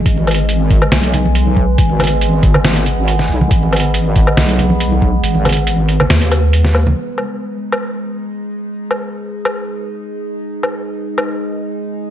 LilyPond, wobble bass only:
\new Staff \with { instrumentName = "Wobble bass" } { \clef bass \time 4/4 \key gis \minor \tempo 4 = 139 gis,,2 b,,2 | gis,,2 gis,,4. b,,8 | gis,,2 b,,2 | gis,,2 dis,2 |
r1 | r1 | r1 | }